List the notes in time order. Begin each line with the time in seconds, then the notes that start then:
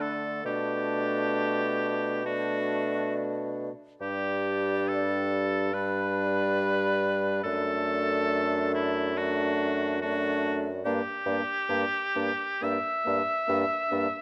Already playing: D3 A3 D4 D5
0.01 A4
0.44 B2 A3 D4 G4 D5
2.25 A3 D4 F#4 D5
4.01 G2 G3 D4 G4 D5
4.89 A4
5.72 G3 D4 B4 D5
7.43 F#2 A3 D4 A4 D5
8.74 E4
9.16 A3 D4 F#4 D5
10.02 A3 D4 F#4 D5
10.84 G2 A#3 D4 G4 D5
11.26 G2 A#3 D4 D5
11.69 G2 A#3 D4 D5
12.15 G2 A#3 D4 D5
12.61 G2 A#3 D4 D5 E5
13.05 G2 A#3 D4 D5
13.47 G2 A#3 D4 D5
13.91 G2 A#3 D4 D5